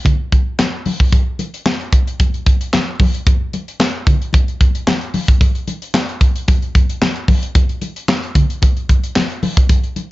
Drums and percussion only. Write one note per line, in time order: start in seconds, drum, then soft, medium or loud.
0.05 kick loud
0.05 closed hi-hat medium
0.05 muted conga soft
0.05 low conga medium
0.32 kick medium
0.32 closed hi-hat medium
0.32 muted conga soft
0.59 snare loud
0.59 clap medium
0.59 closed hi-hat medium
0.59 high conga medium
0.86 open hi-hat medium
0.86 high conga medium
1.00 kick medium
1.12 kick loud
1.12 closed hi-hat loud
1.12 muted conga medium
1.39 closed hi-hat medium
1.39 muted conga soft
1.54 closed hi-hat medium
1.66 snare loud
1.66 clap medium
1.66 high conga medium
1.81 closed hi-hat soft
1.93 kick loud
1.93 closed hi-hat medium
2.07 closed hi-hat medium
2.20 kick loud
2.20 closed hi-hat medium
2.20 muted conga medium
2.34 closed hi-hat soft
2.46 kick loud
2.46 closed hi-hat medium
2.61 closed hi-hat medium
2.73 snare loud
2.73 clap medium
2.73 high conga medium
3.00 kick loud
3.00 open hi-hat medium
3.00 high conga medium
3.14 closed hi-hat medium
3.27 kick loud
3.27 closed hi-hat medium
3.27 muted conga medium
3.53 closed hi-hat medium
3.53 muted conga soft
3.68 closed hi-hat medium
3.80 snare loud
3.80 clap medium
3.80 high conga medium
4.07 kick loud
4.07 closed hi-hat medium
4.07 low conga medium
4.22 closed hi-hat soft
4.33 kick loud
4.33 closed hi-hat medium
4.33 muted conga medium
4.48 closed hi-hat soft
4.61 kick loud
4.61 closed hi-hat medium
4.75 closed hi-hat medium
4.87 snare loud
4.87 clap medium
4.87 high conga medium
5.01 closed hi-hat soft
5.14 open hi-hat medium
5.14 high conga medium
5.28 kick loud
5.28 closed hi-hat medium
5.41 kick loud
5.41 closed hi-hat medium
5.41 muted conga medium
5.55 closed hi-hat soft
5.67 closed hi-hat medium
5.67 muted conga soft
5.82 closed hi-hat medium
5.94 snare loud
5.94 clap medium
5.94 high conga medium
6.09 closed hi-hat soft
6.21 kick medium
6.21 closed hi-hat medium
6.36 closed hi-hat soft
6.48 kick loud
6.48 closed hi-hat medium
6.48 muted conga medium
6.62 closed hi-hat soft
6.75 kick loud
6.75 closed hi-hat medium
6.75 muted conga soft
6.90 closed hi-hat medium
7.02 snare loud
7.02 clap medium
7.02 high conga medium
7.16 closed hi-hat soft
7.28 kick medium
7.28 open hi-hat medium
7.28 high conga medium
7.43 closed hi-hat medium
7.55 kick loud
7.55 closed hi-hat loud
7.55 muted conga medium
7.69 closed hi-hat soft
7.82 closed hi-hat medium
7.82 muted conga soft
7.96 closed hi-hat medium
8.08 snare loud
8.08 clap medium
8.08 high conga medium
8.23 closed hi-hat soft
8.35 kick loud
8.35 closed hi-hat medium
8.35 low conga medium
8.50 closed hi-hat soft
8.62 kick loud
8.62 closed hi-hat medium
8.62 muted conga medium
8.77 closed hi-hat soft
8.89 kick medium
8.89 closed hi-hat medium
8.89 muted conga soft
9.04 closed hi-hat medium
9.16 snare loud
9.16 clap medium
9.16 high conga medium
9.30 closed hi-hat soft
9.43 open hi-hat medium
9.43 high conga medium
9.57 kick loud
9.57 closed hi-hat medium
9.69 kick loud
9.69 closed hi-hat loud
9.69 muted conga medium
9.84 closed hi-hat soft
9.96 closed hi-hat medium
9.96 muted conga soft